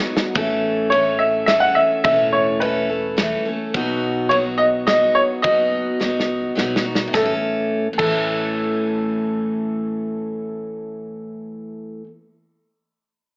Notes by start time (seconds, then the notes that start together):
Already playing: D#3 F#3 B3 D#4 F#4
0.17 snare
0.35 A1 A2 E3 A3 C#4 A4, kick, ride
0.90 E3 A3 C#4 C#5, ride
0.94 A4
1.19 E5
1.46 E3 A3 C#4 E5, snare, ride
1.50 A4
1.60 F#5
1.75 E5
2.04 E1 A2 E3 A3 C#4 A4 E5, kick, ride
2.33 C#5
2.60 E3 A3 C#4 A4 B4, ride
2.89 A3 C#4 A4
3.17 E3 A3 C#4 A4, snare, ride
3.46 A3 C#4 A4
3.74 B1 B2 F#3 B3 D#4 F#4, kick, ride
4.29 F#3 B3 D#4 F#4 C#5, ride
4.58 D#5
4.86 F#3 B3 D#4 F#4 D#5, snare, ride
5.15 C#5
5.42 F#1 B2 F#3 B3 D#4 F#4 D#5, kick, ride
6.00 C#2 F#3 B3 D#4 F#4, snare
6.20 snare
6.55 B1 F#3 B3 D#4 F#4, snare
6.76 snare
6.84 B3 D#4 F#4
6.95 snare
7.07 A2
7.13 A1 E3 A4, kick, snare
7.17 A3
7.22 C#4
7.26 A4
7.93 A2
7.98 A1 E3 A4, kick, crash
8.03 A3 C#4
8.11 A4